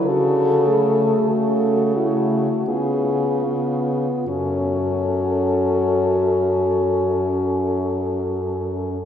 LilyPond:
<<
  \new Staff \with { instrumentName = "French horn" } { \time 3/4 \key fis \minor \tempo 4 = 38 a'4 fis'4 gis'8 r8 | a'2. | }
  \new Staff \with { instrumentName = "French horn" } { \time 3/4 \key fis \minor fis'8 gis'8 a'8 e'8 eis'4 | fis'2. | }
  \new Staff \with { instrumentName = "French horn" } { \time 3/4 \key fis \minor r8 a4 a8 b8 b8 | cis'2. | }
  \new Staff \with { instrumentName = "French horn" } { \clef bass \time 3/4 \key fis \minor cis4 cis4 cis4 | fis,2. | }
>>